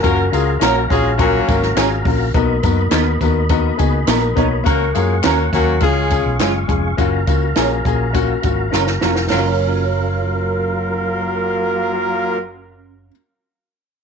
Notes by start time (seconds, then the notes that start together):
0.03 F#1 A#3 C#4 F4 F#4 A#4 F5 A#5, kick, closed hi-hat, tambourine
0.32 C#2 G#3 C#4 F4 F#4 G#4 A#4, closed hi-hat, tambourine
0.60 A#1 A#3 C#4 F4 F#4 A#4, snare, clap, closed hi-hat, tambourine
0.89 A#1 G#3 C#4 F4 F#4 G#4 C#5, kick, closed hi-hat, tambourine
1.18 F#3 A#3 C#4 F4 F#4 A#4, kick, closed hi-hat
1.47 G#1 C#4 F4 F#4 A#4, kick, closed hi-hat, tambourine
1.63 snare
1.75 G#1 C#4 F4 F#4 G#4 A#4, snare, clap, closed hi-hat, tambourine
2.04 A#1 C#4 F4 F#4 A#4, kick, open hi-hat
2.34 B1 A#3 B3 D#4 F#4 A#4 D#5 B5, kick, closed hi-hat, tambourine
2.63 F#2 B3 D#4 F#4 A#4, kick, closed hi-hat, tambourine
2.91 D#2 B3 D#4 F#4 A#4, snare, clap, closed hi-hat, tambourine
3.20 D#2 B3 D#4 F#4 A#4, kick, closed hi-hat, tambourine
3.49 B3 D#4 F#4 A#4, kick, closed hi-hat, tambourine
3.77 C#2 B3 D#4 F#4 G#4, kick, closed hi-hat, tambourine
4.07 A#1 B3 D#4 F#4 A#4, snare, clap, closed hi-hat, tambourine
4.35 B1 B3 D#4 F#4 A#4 C#5, kick, closed hi-hat, tambourine
4.64 C#2 A#3 C#4 F#4 A#4 F#5 C#6, kick, closed hi-hat, tambourine
4.94 F#2 G#3 A#3 C#4 F4 F#4 G#4 A#4, closed hi-hat, tambourine
5.23 D#2 A#3 C#4 F#4 A#4 C#5, snare, clap, closed hi-hat, tambourine
5.53 D#2 F#3 A#3 C#4 F#4 A#4, kick, snare, closed hi-hat, tambourine
5.80 C#2 G#3 C#4 F4 G#4 F5, kick, closed hi-hat
6.10 G#3 C#4 F4 G#4, kick, closed hi-hat, tambourine
6.26 B1
6.39 F#1 G#3 C#4 F4 G#4, snare, clap, closed hi-hat, tambourine
6.68 F1 G#3 C#4 F4 G#4, kick, closed hi-hat
6.97 F#1 A#3 C#4 F4 F#4 A#5, kick, closed hi-hat, tambourine
7.27 C#2 A#3 C#4 F4 F#4, kick, closed hi-hat, tambourine
7.56 A#1 A#3 C#4 F4 G#4 A#4, snare, clap, closed hi-hat, tambourine
7.85 A#1 A#3 C#4 F4 G#4, kick, closed hi-hat, tambourine
8.13 A#3 C#4 F4 F#4, kick, closed hi-hat, tambourine
8.42 G#1 A#3 C#4 F4 F#4, kick, closed hi-hat, tambourine
8.71 F#1 A#3 C#4 F4 F#4 A#4, snare
8.75 clap, tambourine
8.87 snare
9.01 F1 A#3 C#4 F4 F#4 A#4, snare, tambourine
9.16 snare
9.28 F#3 A#3 C#4 F4 A#4 F5, snare, open hi-hat
9.32 F#1 F4 A#4, tambourine
9.36 F#4